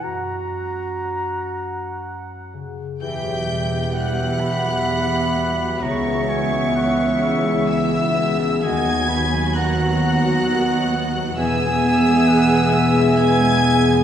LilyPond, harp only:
\new Staff \with { instrumentName = "Harp" } { \time 3/4 \key e \lydian \tempo 4 = 64 <fis, e gis ais e'>4 cis''4. cis8 | e,8 b,8 b8 g'8 e''8 g'8 | cis8 gis8 b8 gis'8 e''8 gis'8 | dis8 dis'8 b8 fis'8 dis''8 fis'8 |
e8 e'8 b8 gis'4 gis'8 | }